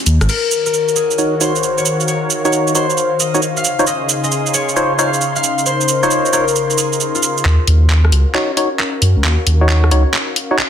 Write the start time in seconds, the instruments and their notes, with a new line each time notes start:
0.06 detuned saw bass D#2, open hi-hat, cabasa
0.21 detuned saw bass G#1, cross-stick, closed hi-hat, cabasa
0.29 analog synth pad D#3 F#4 A#4 C#5 F5, harp A#4, crash, cabasa
0.51 cabasa
0.66 harp A#4, cabasa
0.74 cabasa
0.88 cabasa
0.96 harp G#4, cabasa
1.11 cabasa
1.18 synth stab D#4 F#4 C#5, cabasa
1.41 synth stab D#4 F#4 C#5, harp C5, cabasa
1.56 cabasa
1.63 cabasa
1.78 harp C#5, cabasa
1.86 cabasa
2.00 cabasa
2.08 harp C#5, cabasa
2.30 cabasa
2.45 synth stab D#4 F#4 C#5, harp C#5, cabasa
2.53 cabasa
2.67 cabasa
2.75 synth stab D#4 F#4 C#5, harp C5, cabasa
2.90 cabasa
2.98 cabasa
3.20 harp D#5, cabasa
3.34 synth stab D#4 F#4 C#5, cabasa
3.42 cabasa
3.57 harp F5, cabasa
3.64 analog synth pad C#3 D#4 G#4 C6, cabasa
3.79 synth stab D#4 F4 C5 C#5, cabasa
3.87 harp D#5, cabasa
4.09 cabasa
4.24 harp D#5, cabasa
4.32 cabasa
4.46 cabasa
4.54 harp C#5, cabasa
4.69 cabasa
4.76 synth stab D#4 F4 C5 C#5, cabasa
4.99 synth stab D#4 F4 C5 C#5, harp F5, cabasa
5.14 cabasa
5.21 cabasa
5.36 harp F5, cabasa
5.44 analog synth pad A#4, cabasa
5.58 cabasa
5.66 harp C5, cabasa
5.81 cabasa
5.88 cabasa
6.03 synth stab D#4 F4 C5 C#5, harp C5, cabasa
6.11 cabasa
6.26 cabasa
6.33 synth stab D#4 F4 C5 C#5, harp A#4, cabasa
6.48 cabasa
6.56 cabasa
6.70 cabasa
6.78 harp G#4, cabasa
6.93 cabasa
7.00 cabasa
7.15 harp F4, cabasa
7.23 cabasa
7.38 cabasa
7.45 detuned saw bass D#2, analog synth pad C#4 F#4 A#4 F5, clap
7.67 detuned saw bass D#2, open hi-hat
7.90 clap
8.05 cross-stick
8.12 detuned saw bass C#2, open hi-hat
8.35 synth stab D#4 F#4 C#5, clap
8.57 synth stab D#4 F#4 C#5, open hi-hat
8.79 clap
9.02 detuned saw bass F#2, open hi-hat
9.17 detuned saw bass C#2
9.24 detuned saw bass D#2, clap
9.47 detuned saw bass D#2, open hi-hat
9.61 synth stab D#4 F#4 C#5
9.69 clap
9.84 cross-stick
9.91 detuned saw bass C#2, synth stab D#4 F#4 C#5, open hi-hat
10.14 clap
10.36 open hi-hat
10.51 synth stab D#4 F#4 C#5
10.59 clap